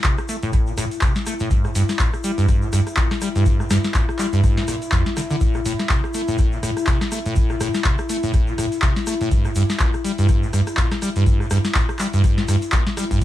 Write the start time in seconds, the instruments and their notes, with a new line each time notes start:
Already playing: analog synth pad E4
0.04 acid bass C3, kick, clap, closed hi-hat, shaker
0.18 cross-stick, shaker
0.29 acid bass A3, open hi-hat, shaker
0.43 acid bass A2, closed hi-hat, shaker
0.53 acid bass A2, kick, cross-stick, closed hi-hat, shaker
0.67 acid bass A#2, shaker
0.77 acid bass A2, cross-stick, open hi-hat, shaker
0.91 closed hi-hat, shaker
1.01 acid bass C3, kick, cross-stick, clap, closed hi-hat, shaker
1.16 snare, shaker
1.26 acid bass A3, cross-stick, open hi-hat, shaker
1.39 acid bass A2, closed hi-hat, shaker
1.51 acid bass G2, kick, closed hi-hat, shaker
1.64 acid bass A2, cross-stick, shaker
1.75 acid bass G2, open hi-hat, shaker
1.89 cross-stick, snare, closed hi-hat, shaker
1.99 acid bass A#2, kick, clap, closed hi-hat, shaker
2.14 cross-stick, shaker
2.24 acid bass G3, open hi-hat, shaker
2.38 acid bass G2, closed hi-hat, shaker
2.48 acid bass G2, kick, cross-stick, closed hi-hat, shaker
2.62 acid bass A2, shaker
2.73 acid bass G2, cross-stick, open hi-hat, shaker
2.87 cross-stick, closed hi-hat, shaker
2.97 acid bass A#2, kick, cross-stick, clap, closed hi-hat, shaker
3.11 cross-stick, snare, shaker
3.21 acid bass G3, cross-stick, open hi-hat, shaker
3.35 acid bass G2, closed hi-hat, shaker
3.46 acid bass G2, kick, closed hi-hat, shaker
3.60 acid bass A2, cross-stick, shaker
3.70 acid bass G2, cross-stick, snare, open hi-hat, shaker
3.84 cross-stick, snare, closed hi-hat, shaker
3.94 acid bass A#2, kick, clap, closed hi-hat, shaker
4.09 cross-stick, shaker
4.19 acid bass G3, clap, open hi-hat, shaker
4.33 acid bass G2, closed hi-hat, shaker
4.43 acid bass G2, kick, cross-stick, closed hi-hat, shaker
4.57 acid bass A2, snare, shaker
4.68 acid bass A#2, cross-stick, open hi-hat, shaker
4.82 closed hi-hat, shaker
4.92 acid bass F2, kick, cross-stick, clap, closed hi-hat, shaker
5.06 snare, shaker
5.17 acid bass D3, cross-stick, snare, open hi-hat, shaker
5.30 acid bass D3, closed hi-hat, shaker
5.41 acid bass A2, kick, closed hi-hat, shaker
5.54 acid bass A#2, cross-stick, shaker
5.65 acid bass A2, open hi-hat, shaker
5.79 cross-stick, snare, closed hi-hat, shaker
5.89 acid bass C3, kick, clap, closed hi-hat, shaker
6.04 cross-stick, shaker
6.14 acid bass A3, open hi-hat, shaker
6.28 acid bass A2, closed hi-hat, shaker
6.38 acid bass A2, kick, cross-stick, closed hi-hat, shaker
6.52 acid bass A#2, shaker
6.63 acid bass A2, cross-stick, open hi-hat, shaker
6.77 cross-stick, closed hi-hat, shaker
6.87 acid bass C3, kick, cross-stick, clap, closed hi-hat, shaker
7.01 cross-stick, snare, shaker
7.12 acid bass A3, cross-stick, open hi-hat, shaker
7.26 acid bass A2, closed hi-hat, shaker
7.36 acid bass A2, kick, closed hi-hat, shaker
7.50 acid bass A#2, cross-stick, shaker
7.60 acid bass A2, cross-stick, open hi-hat, shaker
7.74 cross-stick, snare, closed hi-hat, shaker
7.84 acid bass C3, kick, clap, closed hi-hat, shaker
7.99 cross-stick, shaker
8.09 acid bass A3, open hi-hat, shaker
8.23 acid bass A2, closed hi-hat, shaker
8.34 acid bass A2, kick, cross-stick, closed hi-hat, shaker
8.47 acid bass A#2, shaker
8.58 acid bass A2, cross-stick, open hi-hat, shaker
8.72 closed hi-hat, shaker
8.82 acid bass C3, kick, cross-stick, clap, closed hi-hat, shaker
8.96 snare, shaker
9.07 acid bass A3, cross-stick, open hi-hat, shaker
9.21 acid bass A2, closed hi-hat, shaker
9.31 acid bass G2, kick, closed hi-hat, shaker
9.45 acid bass A2, cross-stick, shaker
9.55 acid bass G2, open hi-hat, shaker
9.70 cross-stick, snare, closed hi-hat, shaker
9.80 acid bass A#2, kick, clap, closed hi-hat, shaker
9.94 cross-stick, shaker
10.04 acid bass G3, open hi-hat, shaker
10.18 acid bass G2, closed hi-hat, shaker
10.29 kick, cross-stick, closed hi-hat, shaker
10.43 acid bass A2, shaker
10.53 acid bass G2, cross-stick, open hi-hat, shaker
10.67 cross-stick, closed hi-hat, shaker
10.77 acid bass A#2, kick, cross-stick, clap, closed hi-hat, shaker
10.91 cross-stick, snare, shaker
11.02 acid bass G3, cross-stick, open hi-hat, shaker
11.16 acid bass G2, closed hi-hat, shaker
11.26 acid bass G2, kick, closed hi-hat, shaker
11.40 acid bass A2, cross-stick, shaker
11.50 acid bass G2, cross-stick, open hi-hat, shaker
11.65 cross-stick, snare, closed hi-hat, shaker
11.75 acid bass A#2, kick, clap, closed hi-hat, shaker
11.89 cross-stick, shaker
11.99 acid bass G3, clap, open hi-hat, shaker
12.13 acid bass G2, closed hi-hat, shaker
12.24 acid bass G2, kick, cross-stick, closed hi-hat, shaker
12.38 acid bass A2, snare, shaker
12.48 acid bass G2, cross-stick, open hi-hat, shaker
12.62 closed hi-hat, shaker
12.72 acid bass A#2, kick, cross-stick, clap, closed hi-hat, shaker
12.87 snare, shaker
12.97 acid bass G3, cross-stick, snare, open hi-hat, shaker
13.11 acid bass G2, kick, closed hi-hat, shaker